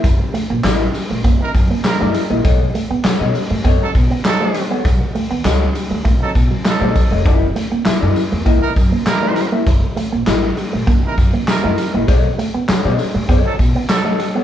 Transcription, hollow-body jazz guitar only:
\new Staff \with { instrumentName = "Hollow-body jazz guitar" } { \time 4/4 \key b \major \tempo 4 = 100 r4 <e' ais' dis''>16 r2 <e' ais' dis''>16 r16 <e' ais' dis''>16 | <a' cis'' dis''>16 r8. <a' cis'' fis''>16 <a' cis'' dis''>16 r8 <a' cis'' dis''>16 r4 <a' cis'' dis''>16 r16 <a' cis'' fis''>16 | r4 <a' cis'' dis''>16 r2 <a' cis'' dis''>16 r16 <a' cis'' dis''>16 | <e' ais' dis''>16 r8. <e' ais' e''>16 <e' ais' dis''>16 r8 <e' ais' dis''>16 r4 <e' ais' dis''>16 r16 <e' ais' e''>16 |
r4 <e' ais' dis''>16 r2 <e' ais' dis''>16 r16 <e' ais' dis''>16 | <a' cis'' dis''>16 r8. <a' cis'' fis''>16 <a' cis'' dis''>16 r8 <a' cis'' dis''>16 r4 <a' cis'' dis''>16 r16 <a' cis'' fis''>16 | }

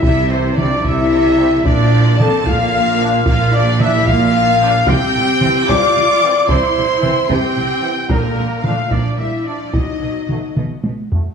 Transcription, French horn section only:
\new Staff \with { instrumentName = "French horn section" } { \time 6/8 \key c \mixolydian \tempo 4. = 74 e'8 c'8 d'8 e'4. | d'4 a'8 f'4. | f'8 d'8 e'8 f'4. | g'4. d''4. |
c''4. g'4. | bes4 f'8 d'8 e'8 d'8 | dis'4. r4. | }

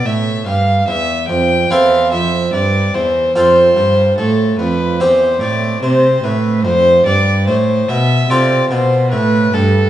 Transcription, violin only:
\new Staff \with { instrumentName = "Violin" } { \time 4/4 \key f \lydian \tempo 4 = 73 e''8 f''8 e''8 g''8 f''8 e''8 d''8 c''8 | c''4 a'8 b'8 c''8 d''8 c''8 b'8 | c''8 d''8 c''8 e''8 d''8 c''8 b'8 a'8 | }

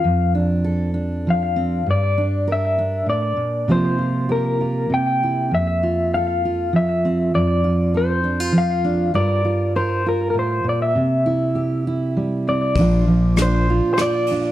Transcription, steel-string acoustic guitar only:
\new Staff \with { instrumentName = "Steel-string acoustic guitar" } { \time 3/4 \key c \mixolydian \tempo 4 = 99 << { r8 d'8 a'8 d'4 c'8 | r8 d'8 bes'8 d'4. | <f bes f' g'>8 f'8 g'8 f'8 r8 e'8 | r8 f'8 a'8 f'4 c'8 |
r8 f'8 a'8 d'16 f'8. d'8 | <g f' bes'>8 f'8 bes'8 f'4. | r8 e'8 g'8 e'4 c'8 | <f d' f' c''>4 d'8 f'8 f'8 d'8 | } \\ { <f, f>2 f4 | g,2 a,8 bes,8 | c2 c4 | f,2 f4 |
f,2 f4 | g,2 a,8 bes,8 | c2 g4 | bes,8 f2~ f8 | } >> }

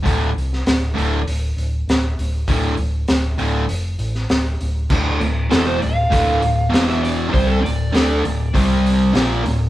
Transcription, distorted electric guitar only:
\new Staff \with { instrumentName = "Distorted electric guitar" } { \clef bass \time 4/4 \key d \minor \tempo 4 = 99 <d, a, d>8 r4 <d, a, d>8 r2 | <d, a, d>8 r4 <d, a, d>8 r2 | <d, a, d>8 <d, a,>8 <e, b, e>8 <d, a,>8 <d, a, d>8 <d, a,>8 <e, b, e>4 | <c g c'>8 <d, a,>8 <d a d'>8 <d, a,>8 <c g c'>4 <bes, f bes>8 <d, a,>8 | }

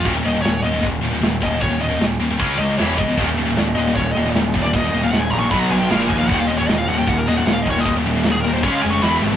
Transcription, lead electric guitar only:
\new Staff \with { instrumentName = "Lead electric guitar" } { \time 4/4 \key ees \minor \tempo 4 = 154 r8 ees''8 des''8 ees''8 r4. ees''8 | des''8 ees''8 r4. ees''8 des''8 ees''8 | r4. ees''8 des''8 ees''8 r8. d''16 | ees''8. f''16 ges''16 aes''16 bes''16 des'''16 b''16 bes''16 aes''16 g''16 f''16 bes'16 aes''16 f''16 |
ges''16 f''16 ees''16 des''16 ees''16 f''16 ges''16 g''16 ges''16 bes'16 ees''16 ges''16 ges''16 f''16 ees''16 des''16 | ees''8 r8. aes'16 bes'16 c''16 des''16 f''16 aes''16 des'''16 b''8 r8 | }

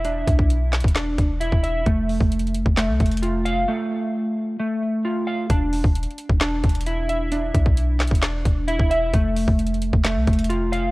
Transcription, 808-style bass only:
\new Staff \with { instrumentName = "808-style bass" } { \clef bass \time 4/4 \key f \lydian \tempo 4 = 132 e,,8 b,,4~ b,,16 e,,8. e,,8. e,,8. | f,,8. f,,4 f,,8 c,16 f,,4. | r1 | e,,8. e,,8 r8 e,,8. e,,4.~ |
e,,8 b,,4~ b,,16 e,,8. e,,8. e,,8. | f,,8. f,,4 f,,8 c,16 f,,4. | }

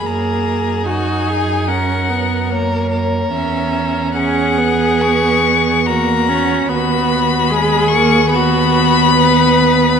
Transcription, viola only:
\new Staff \with { instrumentName = "Viola" } { \time 4/4 \key fis \mixolydian \tempo 4 = 73 ais4 dis'4 cis'8 b8 ais4 | cis'4 cis'8 b4. ais8 cis'8 | b4 gis8 ais8 b2 | }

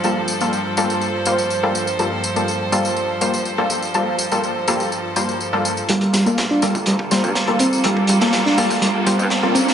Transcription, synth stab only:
\new Staff \with { instrumentName = "Synth stab" } { \time 4/4 \key g \minor \tempo 4 = 123 <g bes f' a'>16 r8 <g bes f' a'>16 r8 <g bes f' a'>4 <g bes f' c''>16 r8 <g bes f' a'>16 r8 | <g bes f' a'>16 r8 <g bes f' a'>16 r8 <g bes f' a'>4 <g bes f' c''>16 r8 <g bes f' a'>16 r8 | <g bes f' a'>16 r8 <g bes f' a'>16 r8 <g bes f' a'>4 <g bes f' c''>16 r8 <g bes f' a'>16 r8 | <g bes f' a'>16 r8 <g bes f' a'>16 r8 <g bes f' a'>4 <g bes f' c''>16 r8 <g bes f' a'>16 r8 |
<g bes f' a'>16 r8 <g bes f' a'>16 r8 <g bes f' a'>4 <g bes f' c''>16 r8 <g bes f' a'>16 r8 | }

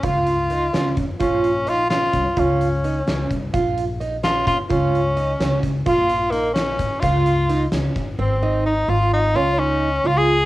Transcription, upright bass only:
\new Staff \with { instrumentName = "Upright bass" } { \clef bass \time 5/8 \key des \major \tempo 4 = 129 des,4. des,8 f,8 | bes,,2 c,16 r16 | des,4. des,8 c,8 | bes,,2 bes,16 r16 |
des,4. des,8 des,8 | bes,,2 aes,16 r16 | des,4. des,8 a,,8 | aes,,4. aes,,4 |
des,4. des,4 | }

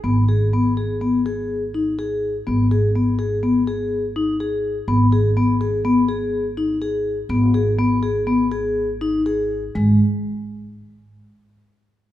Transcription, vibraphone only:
\new Staff \with { instrumentName = "Vibraphone" } { \time 5/4 \key gis \minor \tempo 4 = 124 b8 gis'8 b8 gis'8 b8 gis'4 dis'8 gis'4 | b8 gis'8 b8 gis'8 b8 gis'4 dis'8 gis'4 | b8 gis'8 b8 gis'8 b8 gis'4 dis'8 gis'4 | b8 gis'8 b8 gis'8 b8 gis'4 dis'8 gis'4 |
gis8 r1 r8 | }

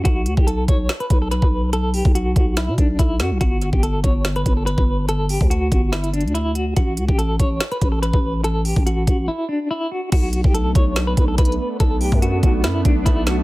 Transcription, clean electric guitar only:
\new Staff \with { instrumentName = "Clean electric guitar" } { \time 4/4 \key b \minor \tempo 4 = 143 fis'8. g'16 a'8 cis''8. b'8 a'16 b'4 | a'8 g'8 fis'4 e'8 d'8 e'8 fis'8 | fis'8. g'16 a'8 cis''8. b'8 a'16 b'4 | a'8 g'8 fis'4 e'8 d'8 e'8 fis'8 |
fis'8. g'16 a'8 cis''8. b'8 a'16 b'4 | a'8 g'8 fis'4 e'8 d'8 e'8 fis'8 | fis'8. g'16 a'8 cis''8. b'8 a'16 b'4 | a'8 g'8 fis'4 e'8 d'8 e'8 fis'8 | }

